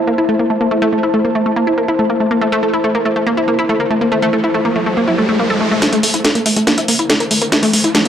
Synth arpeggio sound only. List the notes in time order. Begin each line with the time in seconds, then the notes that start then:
0.07 A#3
0.18 E4
0.29 A3
0.39 A#3
0.50 A3
0.61 A#3
0.71 A3
0.82 A3
0.93 A3
1.03 E4
1.14 A3
1.25 A#3
1.35 A3
1.46 A3
1.56 A#3
1.67 E4
1.78 A#3
1.88 E4
1.99 A3
2.10 A#3
2.20 A3
2.31 A#3
2.41 A3
2.52 A3
2.63 A3
2.73 E4
2.84 A3
2.95 A#3
3.05 A3
3.16 A3
3.27 A#3
3.37 E4
3.48 A#3
3.59 E4
3.69 A3
3.80 A#3
3.90 A3
4.01 A#3
4.12 A3
4.22 A3
4.33 A3
4.44 E4
4.54 A3
4.65 A#3
4.76 A3
4.86 A3
4.97 A#3
5.08 E4
5.18 A3
5.29 A3
5.39 A#3
5.50 A4
5.61 A3
5.71 A3
5.82 A3
5.93 A3
6.03 A3
6.14 E4
6.24 A3
6.35 A#3
6.46 A3
6.57 A3
6.67 A#3
6.78 E4
6.88 A#3
6.99 E4
7.10 A3
7.20 A#3
7.31 A3
7.42 A#3
7.52 A3
7.63 A3
7.73 A3
7.84 E4
7.95 A3